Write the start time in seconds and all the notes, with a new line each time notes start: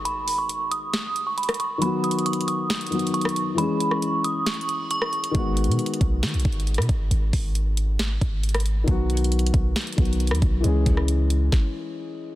Already playing: D#3 G#3 B3 F#4
0.05 B5, closed hi-hat
0.28 open hi-hat
0.38 C#6
0.49 closed hi-hat
0.71 D#6, closed hi-hat
0.93 D#6, snare, closed hi-hat
1.16 closed hi-hat
1.27 C#6
1.38 B5, closed hi-hat
1.43 closed hi-hat
1.49 cross-stick, closed hi-hat
1.54 closed hi-hat
1.60 C#6, closed hi-hat
1.78 D#3 F#3 B5, closed hi-hat
1.83 B3 F#4
2.04 D#6, closed hi-hat
2.11 closed hi-hat
2.19 closed hi-hat
2.26 C#6, closed hi-hat
2.33 closed hi-hat
2.41 closed hi-hat
2.48 D#6, closed hi-hat
2.70 snare, closed hi-hat
2.75 closed hi-hat
2.81 closed hi-hat
2.87 closed hi-hat
2.91 D#3 F#3 B3 F#4, closed hi-hat
2.99 closed hi-hat
3.07 closed hi-hat
3.14 C#6, closed hi-hat
3.21 cross-stick, closed hi-hat
3.29 closed hi-hat
3.36 closed hi-hat
3.55 E3 G#3 B5, closed hi-hat
3.59 C#4 G#4
3.80 closed hi-hat
3.91 C#6, cross-stick
4.02 closed hi-hat
4.24 D#6, closed hi-hat
4.46 snare, closed hi-hat
4.54 closed hi-hat
4.61 closed hi-hat
4.69 closed hi-hat
4.91 C#6, closed hi-hat
5.02 cross-stick
5.13 closed hi-hat
5.24 closed hi-hat
5.31 G#1 D#3 G#3, kick, closed hi-hat
5.36 B3 F#4
5.57 closed hi-hat
5.64 B2, closed hi-hat
5.71 closed hi-hat
5.79 closed hi-hat
5.86 closed hi-hat
5.94 closed hi-hat
6.01 B1, kick, closed hi-hat
6.23 D#3, snare, closed hi-hat
6.28 closed hi-hat
6.34 B1, closed hi-hat
6.40 closed hi-hat
6.45 G#1, kick, closed hi-hat
6.52 closed hi-hat
6.60 closed hi-hat
6.67 closed hi-hat
6.74 B2, cross-stick, closed hi-hat
6.82 closed hi-hat
6.89 G#1, kick, closed hi-hat
7.11 G#1, closed hi-hat
7.33 G#1, kick, open hi-hat
7.55 closed hi-hat
7.77 closed hi-hat
7.99 snare, closed hi-hat
8.21 G#1, kick, closed hi-hat
8.43 closed hi-hat
8.49 closed hi-hat
8.54 cross-stick, closed hi-hat
8.60 closed hi-hat
8.66 closed hi-hat
8.84 B1 D#3 F#3, kick, closed hi-hat
8.89 B3 F#4
9.10 closed hi-hat
9.17 closed hi-hat
9.24 closed hi-hat
9.32 closed hi-hat
9.39 closed hi-hat
9.46 closed hi-hat
9.54 B1, kick, closed hi-hat
9.76 snare, closed hi-hat
9.81 closed hi-hat
9.87 closed hi-hat
9.93 D#3, closed hi-hat
9.98 B1 F#3 B3 F#4, kick, closed hi-hat
10.05 closed hi-hat
10.13 closed hi-hat
10.20 closed hi-hat
10.27 D#2, cross-stick, closed hi-hat
10.35 closed hi-hat
10.42 B1, kick, closed hi-hat
10.61 C#2 E3 G#3, closed hi-hat
10.65 C#4 G#4
10.86 C#2, kick, closed hi-hat
10.97 cross-stick
11.08 closed hi-hat
11.30 closed hi-hat
11.52 kick, snare